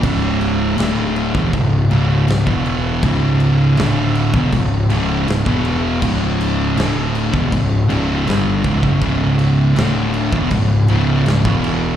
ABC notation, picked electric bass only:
X:1
M:4/4
L:1/16
Q:1/4=80
K:C#phr
V:1 name="Picked electric bass" clef=bass
C,,,4 D,,,3 E,,, C,,,2 C,,,2 C,,, E,,,3 | C,,,4 D,,,3 E,,, C,,,2 C,,,2 C,,, E,,,3 | C,,,4 D,,,3 E,,, C,,,2 C,,,2 =G,,,2 C,,, F,,, | C,,,4 D,,,3 E,,, C,,,2 C,,,2 C,,, E,,,3 |]